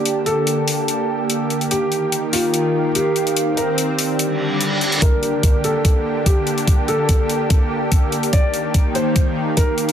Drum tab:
HH |x-x-x-o-x---x-xx|x-x-x-o-x---x-xx|x-x-x-o-x---x-xx|x-x-x-x-x---x-xx|
BD |----------------|----------------|----------------|o---o---o---o---|

HH |x-x-x-x-x---x-xx|x-x-x-x-x---x-xx|
BD |o---o---o---o---|o---o---o---o---|